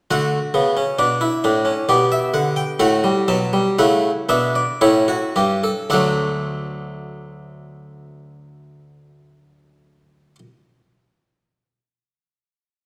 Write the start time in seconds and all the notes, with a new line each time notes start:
0.11 D3 A3 F#4 F#5
0.54 C#3 B3
0.77 C#4
0.99 B2 D4 D5
1.21 E4
1.44 A2 D4
1.65 C#4
1.89 B2 B3 G4 D5
2.12 E5
2.34 D3 F#5
2.56 G5
2.79 A2 A3 F#4 F#5
3.04 G3
3.28 B2 F#3 A5
3.53 G3
3.79 C#3 A3 E4 F#5
4.29 B2 B3 D4 E5
4.55 D5
4.81 A2 C#4 E4 C#5
5.08 F#4
5.36 G2 G4
5.64 A4
5.90 D2 F#3 A3 D4 A4 F#5